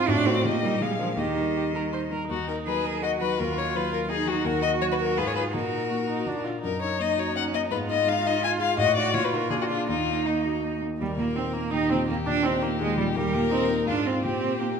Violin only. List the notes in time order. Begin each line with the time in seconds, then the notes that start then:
0.09 D5
0.46 D#5
0.82 F5
1.18 D#5
2.30 F#4
2.49 A#4
2.67 B4
2.85 A#4
3.03 D#5
3.21 B4
3.39 A#4
3.57 C#5
3.76 B4
3.93 A#4
4.10 G#4
4.27 F#4
4.45 A#4
4.62 D#5
4.81 C#5
4.92 B4
5.00 A#4
5.17 B4
5.27 C#5
5.35 B4
5.52 A#4
6.64 A#4
6.82 C#5
7.01 D#5
7.19 C#5
7.36 F#5
7.54 D#5
7.71 B4
7.90 D#5
8.08 F5
8.27 D#5
8.44 G#5
8.61 F5
8.79 D#5
8.96 D5
9.14 C#5
9.24 B4
9.34 A#4
9.50 G#4
9.61 F#4
9.69 F4
9.89 F4
10.26 D#4
11.01 A#4
11.73 G4
12.08 G4
13.16 A#4
13.88 F4
14.23 G4